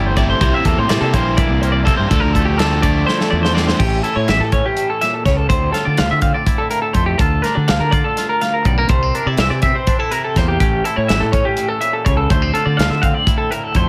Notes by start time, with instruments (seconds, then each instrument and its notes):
Already playing: fingered electric bass G1, overdriven electric guitar E3 A3 E4, clean electric guitar E3 G3 A3 E4
0.06 clean electric guitar C5
0.16 overdriven electric guitar C3 E3 A3 E4, clean electric guitar C3 A3 D5, kick, closed hi-hat
0.30 clean electric guitar C5
0.40 fingered electric bass C2, overdriven electric guitar C3 G3 A#3 E4, clean electric guitar C3 C5, kick, closed hi-hat
0.54 clean electric guitar E5
0.65 fingered electric bass E2, clean electric guitar A#3 A4, kick, closed hi-hat
0.78 fingered electric bass A2, clean electric guitar C5
0.89 fingered electric bass A2, overdriven electric guitar C3 G3 A#3 E4, clean electric guitar C4 D5, snare, closed hi-hat
1.01 fingered electric bass C3, clean electric guitar A4
1.13 fingered electric bass A#1, clean electric guitar E3 A#3 C5, overdriven electric guitar G3 A#3 E4, kick, closed hi-hat
1.37 clean electric guitar E4 D5, kick, closed hi-hat
1.51 fingered electric bass C2
1.61 clean electric guitar A#3 C5, closed hi-hat
1.72 clean electric guitar D5
1.85 overdriven electric guitar C3 G3 A#3 E4, clean electric guitar C3 C4 A4, kick, closed hi-hat
1.97 fingered electric bass G2, clean electric guitar C5
2.09 fingered electric bass D2, clean electric guitar D2 A4, overdriven electric guitar D3 F3 A3 D4, kick, closed hi-hat
2.20 clean electric guitar A#4
2.24 fingered electric bass D2
2.33 clean electric guitar A3 A4, kick, closed hi-hat
2.45 clean electric guitar G4
2.58 overdriven electric guitar D3 F3 A3 D4, clean electric guitar C4 A4, snare, closed hi-hat
2.82 clean electric guitar D3 A3 D5, overdriven electric guitar F3 A3 D4, kick, closed hi-hat
3.06 clean electric guitar E4 C5, snare
3.19 clean electric guitar A4, snare
3.30 fingered electric bass E2, clean electric guitar A3 D5
3.43 clean electric guitar C5, snare
3.54 clean electric guitar A2 C4 D5, overdriven electric guitar D3 F3 A3 D4, snare
3.67 clean electric guitar C5, snare
3.79 fingered electric bass A1, clean electric guitar A2 C#4 G4, kick, crash
4.03 clean electric guitar E4 A4, closed hi-hat
4.16 fingered electric bass A2, clean electric guitar C#5
4.27 fingered electric bass A1, clean electric guitar E3 E5, snare, closed hi-hat
4.40 fingered electric bass A2, clean electric guitar A4
4.52 clean electric guitar C#4 C#5, kick, closed hi-hat
4.66 clean electric guitar G4
4.76 clean electric guitar A2, closed hi-hat
4.90 clean electric guitar A4
5.01 clean electric guitar A#2 E5, snare, closed hi-hat
5.14 clean electric guitar A4
5.25 fingered electric bass C#2, clean electric guitar C#3 C#5, kick, snare, closed hi-hat
5.37 clean electric guitar A4
5.49 clean electric guitar D2 C4 C5, fingered electric bass D2, kick, closed hi-hat
5.72 clean electric guitar F4 A4, snare, closed hi-hat
5.85 fingered electric bass D3, clean electric guitar D5
5.97 fingered electric bass D2, clean electric guitar D3 F5, snare, closed hi-hat
6.11 fingered electric bass D3, clean electric guitar E5
6.22 clean electric guitar C4 F5, kick, closed hi-hat
6.34 clean electric guitar D5
6.46 clean electric guitar E4, kick, closed hi-hat
6.58 clean electric guitar A4
6.70 clean electric guitar A2 A#4, closed hi-hat
6.82 clean electric guitar A4
6.93 fingered electric bass F2, clean electric guitar A3 C5, kick, closed hi-hat
7.06 clean electric guitar G4
7.18 fingered electric bass D2, clean electric guitar D2 F4 A4, kick, closed hi-hat
7.42 clean electric guitar D4 A#4, snare, closed hi-hat
7.55 fingered electric bass D3, clean electric guitar D5
7.68 fingered electric bass D2, clean electric guitar D3 F5, snare, closed hi-hat
7.80 fingered electric bass D3, clean electric guitar A#4
7.91 clean electric guitar F4 D5, kick, closed hi-hat
8.04 clean electric guitar A4
8.17 clean electric guitar F4, snare, closed hi-hat
8.29 clean electric guitar A#4
8.41 clean electric guitar D2 F5, snare, closed hi-hat
8.54 clean electric guitar A#4
8.65 fingered electric bass B1, clean electric guitar G3 D5, kick, closed hi-hat
8.78 clean electric guitar A#3 A#4
8.89 fingered electric bass C2, clean electric guitar C3 A3 C5, kick, closed hi-hat
9.03 clean electric guitar C4
9.15 clean electric guitar D4 A#4, closed hi-hat
9.26 fingered electric bass C3, clean electric guitar E4 D5
9.37 fingered electric bass C2, clean electric guitar E3 E5, snare, closed hi-hat
9.50 fingered electric bass C3, clean electric guitar D5
9.62 clean electric guitar C4 E5, kick, snare, closed hi-hat
9.75 clean electric guitar C5
9.87 clean electric guitar D4, kick, closed hi-hat
9.99 clean electric guitar E4 A4
10.11 clean electric guitar C3 A#4, closed hi-hat
10.24 clean electric guitar A4
10.36 fingered electric bass E2, clean electric guitar A#3 C5, kick, snare, closed hi-hat
10.48 clean electric guitar G4
10.60 fingered electric bass A1, clean electric guitar A2 C#4 G4, kick, closed hi-hat
10.84 clean electric guitar E4 A4, closed hi-hat
10.96 fingered electric bass A2, clean electric guitar C#5
11.08 fingered electric bass A1, clean electric guitar E3 E5, snare, closed hi-hat
11.20 fingered electric bass A2, clean electric guitar A4
11.32 clean electric guitar C#4 C#5, kick, closed hi-hat
11.45 clean electric guitar G4
11.57 clean electric guitar A2, closed hi-hat
11.68 clean electric guitar A4
11.81 clean electric guitar A#2 E5, closed hi-hat
11.93 clean electric guitar A4
12.05 fingered electric bass C#2, clean electric guitar C#3 C#5, kick, closed hi-hat
12.17 clean electric guitar A4
12.30 clean electric guitar D2 A3 C5, fingered electric bass D2, kick, closed hi-hat
12.42 clean electric guitar C4
12.54 clean electric guitar F4 A4, closed hi-hat
12.65 fingered electric bass D3, clean electric guitar D5
12.77 fingered electric bass D2, clean electric guitar D3 F5, snare, closed hi-hat
12.90 fingered electric bass D3, clean electric guitar E5
13.02 clean electric guitar C4 F5, kick, closed hi-hat
13.14 clean electric guitar D5
13.27 clean electric guitar E4, kick, closed hi-hat
13.38 clean electric guitar A4
13.51 clean electric guitar A2 A#4, closed hi-hat
13.63 clean electric guitar A4
13.75 fingered electric bass F2, clean electric guitar A3 C5, kick, closed hi-hat